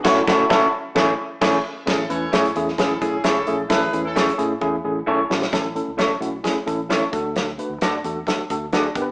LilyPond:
<<
  \new Staff \with { instrumentName = "Clean electric guitar" } { \time 4/4 \key a \major \tempo 4 = 131 <cis' e' a' cis''>8 <cis' e' a' cis''>8 <cis' e' a' cis''>8 r8 <a e' gis' cis''>8 r8 <a e' gis' cis''>8 r8 | r4 <a e' gis' cis''>16 r4. r16 <a e' gis' cis''>16 r8. | r4 <a e' gis' cis''>16 r4. r16 <a e' gis' cis''>16 r8. | r4 <cis' e' a' cis''>16 r4. r16 <cis' e' a' cis''>16 r8. |
r4 <d' fis' a' d''>16 r4. r16 <d' fis' a' d''>16 r8. | }
  \new Staff \with { instrumentName = "Horn section" } { \time 4/4 \key a \major r1 | <cis' e' a'>8 <cis' a' cis''>4 r8 <cis' e' a'>8 <cis' e' gis'>8 <cis' e' a'>8. r16 | <e' gis' b'>8. <cis' e' a'>8. r2 r8 | r1 |
r1 | }
  \new Staff \with { instrumentName = "Tine electric piano" } { \time 4/4 \key a \major <a cis' e' fis'>8 <a cis' e' fis'>8 <a cis' e' a'>8 r8 <a cis' e' gis'>8 r8 <a cis' e' gis' gis''>8 r8 | <a cis' e' gis'>8 <a cis' e' b'>8 <a cis' e' gis'>8 <a cis' e' gis'>8 <a cis' e' gis'>8 <a cis' e' gis'>8 <a cis' e' gis'>8 <a cis' e' gis'>8 | <a cis' e' a'>8 <a cis' e' b'>8 <a cis' e' gis'>8 <a cis' e' gis'>8 <a cis' e' gis'>8 <a cis' e' gis'>8 <a cis' e' a'>8 <a cis' e' fis'>8 | <a cis' e' a'>8 <a cis' e' a'>8 <a cis' e' a'>8 <a cis' e' fis'>8 <a cis' e' gis'>8 <a cis' e' a'>8 <a cis' e' a'>8 <a d' fis' a'>8~ |
<a d' fis' a'>8 <a d' fis' b'>8 <a d' fis' a'>8 <a d' fis' a'>8 <a d' fis' a'>8 <a d' fis' a'>8 <a d' fis' gis'>8 <b d' g' bes' b'>8 | }
  \new Staff \with { instrumentName = "Clean electric guitar" } { \time 4/4 \key a \major <a fis'>8 <a fis'>8 <a fis'>8 r2 r8 | r1 | r1 | r1 |
r1 | }
  \new Staff \with { instrumentName = "Fingered electric bass" } { \clef bass \time 4/4 \key a \major fis,,8 fis,,8 fis,,8 r8 a,,8 r8 a,,8 r8 | a,,8 e,8 a,8 e,8 a,,8 b,,8 cis,8 bes,,8 | a,,8 e,4 a,8 e,8 a,,8 b,,8 bes,,8 | a,,8. cis,8. b,,8 r8 a,,4 d,8~ |
d,8. d,16 fis,8 e,8 r8 d,4 g,,8 | }
  \new DrumStaff \with { instrumentName = "Drums" } \drummode { \time 4/4 <cymc bd sn>8 <bd sn>8 <bd sn>4 <bd sn>4 <cymc bd sn>4 | <hh bd sn>8 hh8 <hh sn>16 hh16 hh16 sn16 <hh bd sn>8 <hh bd>8 <hh sn>8 hh8 | <hh bd sn>8 hh8 <hh sn>16 hh16 hh8 bd4 r8 sn16 sn16 | <hh bd sn>8 hh8 <hh sn>8 hh8 <hh bd sn>8 <hh bd>8 <hh sn>8 <hh bd>8 |
<hh sn>8 hh8 <hh sn>8 hh8 <hh bd sn>8 <hh bd>8 <hh sn>8 <hh bd>8 | }
>>